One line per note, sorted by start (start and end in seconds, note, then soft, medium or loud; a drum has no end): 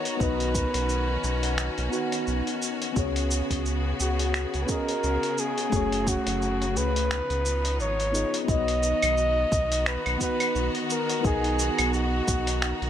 0.00 2.92 D#3 medium
0.00 0.15 B3 medium
0.00 0.18 B3 medium
0.00 0.16 D#4 medium
0.00 0.17 F#4 medium
0.00 7.06 F#4 medium
0.00 0.18 A#4 medium
0.00 0.24 C#5 loud
0.00 0.18 F#5 medium
0.00 2.92 A#5 medium
0.05 closed hi-hat medium
0.05 shaker soft
0.17 0.66 B1 medium
0.17 1.88 B3 medium
0.17 2.94 C#4 medium
0.17 1.88 D#4 medium
0.17 1.89 F#4 medium
0.17 kick loud
0.17 shaker soft
0.22 1.90 B4 medium
0.22 2.28 B4 medium
0.22 1.91 D#5 loud
0.40 closed hi-hat soft
0.40 shaker soft
0.55 kick loud
0.55 shaker medium
0.74 1.18 B1 medium
0.74 closed hi-hat medium
0.74 shaker soft
0.89 shaker soft
1.24 1.70 B1 loud
1.24 shaker medium
1.43 closed hi-hat medium
1.43 shaker soft
1.58 finger snap medium
1.58 shaker soft
1.78 1.89 B1 loud
1.78 closed hi-hat soft
1.78 shaker soft
1.89 2.91 B3 medium
1.89 2.92 D#4 medium
1.89 2.93 F#4 medium
1.89 shaker medium
1.94 2.93 B4 medium
1.94 2.94 F#5 medium
2.12 closed hi-hat medium
2.12 shaker soft
2.27 2.42 B1 medium
2.27 shaker soft
2.47 closed hi-hat soft
2.47 shaker soft
2.62 shaker medium
2.82 closed hi-hat medium
2.82 shaker soft
2.93 3.42 C#2 medium
2.93 8.44 C#3 medium
2.93 4.63 B3 medium
2.93 5.69 B3 medium
2.93 4.64 C#4 medium
2.93 4.65 F#4 medium
2.93 7.06 G#4 medium
2.93 kick loud
2.93 shaker soft
2.97 4.66 G#4 medium
2.97 4.67 C#5 loud
3.16 closed hi-hat soft
3.16 shaker soft
3.31 shaker medium
3.50 3.94 C#2 loud
3.50 kick medium
3.50 closed hi-hat medium
3.50 shaker soft
3.66 shaker soft
4.00 4.46 C#2 medium
4.00 4.65 F#4 medium
4.00 shaker medium
4.19 closed hi-hat medium
4.19 shaker soft
4.34 finger snap medium
4.34 shaker soft
4.54 4.65 C#2 medium
4.54 closed hi-hat soft
4.54 shaker soft
4.64 5.67 B3 medium
4.64 5.68 C#4 medium
4.64 4.72 B4 medium
4.68 5.69 F#4 medium
4.68 5.69 G#4 medium
4.68 5.41 A#4 loud
4.68 5.70 D#5 loud
4.68 kick loud
4.68 shaker medium
4.89 closed hi-hat medium
4.89 shaker soft
5.03 5.18 C#2 medium
5.03 shaker soft
5.23 closed hi-hat soft
5.23 shaker soft
5.38 6.10 G#4 loud
5.38 shaker medium
5.58 closed hi-hat medium
5.58 shaker soft
5.70 6.18 F#1 medium
5.70 7.07 A3 medium
5.70 7.09 A3 medium
5.70 7.08 C#4 medium
5.70 7.09 F#4 medium
5.70 kick loud
5.70 shaker soft
5.74 7.10 G#4 medium
5.74 7.10 C#5 loud
5.92 closed hi-hat soft
5.92 shaker soft
6.07 6.79 F#4 loud
6.07 kick medium
6.07 shaker medium
6.27 6.77 F#1 medium
6.27 closed hi-hat medium
6.27 shaker soft
6.42 shaker soft
6.62 closed hi-hat soft
6.62 shaker soft
6.76 7.22 C#2 medium
6.76 7.80 B4 loud
6.76 shaker medium
6.96 closed hi-hat medium
6.96 shaker soft
7.11 8.47 F3 medium
7.11 8.47 B3 medium
7.11 8.47 D#4 medium
7.11 finger snap medium
7.11 shaker soft
7.30 7.81 C#2 loud
7.30 closed hi-hat soft
7.30 shaker soft
7.45 shaker medium
7.65 closed hi-hat medium
7.65 shaker soft
7.79 8.25 G#1 medium
7.79 8.45 C#5 loud
7.79 shaker soft
8.00 closed hi-hat soft
8.00 shaker soft
8.12 8.43 B3 medium
8.12 8.44 D#4 medium
8.12 8.45 F4 medium
8.12 8.45 G#4 medium
8.12 8.45 D#5 medium
8.12 shaker medium
8.34 closed hi-hat medium
8.34 shaker soft
8.45 8.94 B1 medium
8.45 10.15 B3 medium
8.45 10.16 D#4 medium
8.45 10.17 F#4 medium
8.45 12.90 F#4 medium
8.45 12.90 A#5 medium
8.45 kick loud
8.49 12.90 D#3 medium
8.49 12.90 B3 medium
8.49 10.18 B4 medium
8.49 9.89 D#5 loud
8.49 10.19 D#5 loud
8.49 shaker soft
8.68 closed hi-hat soft
8.83 shaker medium
9.03 9.46 B1 medium
9.03 closed hi-hat medium
9.03 claves medium
9.03 shaker soft
9.17 shaker soft
9.52 9.98 B1 medium
9.52 kick loud
9.52 shaker medium
9.72 closed hi-hat medium
9.72 shaker soft
9.86 10.21 B4 loud
9.86 finger snap medium
9.86 shaker soft
10.06 10.17 B1 loud
10.06 closed hi-hat soft
10.06 claves medium
10.18 11.19 B3 medium
10.18 11.20 D#4 medium
10.18 11.20 F#4 medium
10.18 kick medium
10.18 shaker medium
10.23 10.74 B4 loud
10.23 11.22 F#5 loud
10.40 closed hi-hat medium
10.40 claves medium
10.40 shaker soft
10.55 10.70 B1 medium
10.55 shaker soft
10.75 closed hi-hat soft
10.90 11.23 A#4 medium
10.90 shaker medium
11.10 closed hi-hat medium
11.10 shaker soft
11.21 11.70 B1 medium
11.21 12.90 B3 medium
11.21 12.90 D#4 medium
11.21 12.90 F#4 medium
11.21 kick loud
11.21 shaker soft
11.26 11.90 G#4 loud
11.26 12.90 A#4 medium
11.26 12.90 D#5 loud
11.44 closed hi-hat soft
11.59 shaker medium
11.79 12.22 B1 loud
11.79 closed hi-hat medium
11.79 claves medium
11.79 shaker soft
11.93 12.90 F#4 loud
11.93 shaker soft
12.28 12.74 B1 loud
12.28 kick loud
12.28 shaker medium
12.47 closed hi-hat medium
12.47 shaker soft
12.62 finger snap medium
12.62 shaker soft
12.82 12.90 B1 loud
12.82 closed hi-hat soft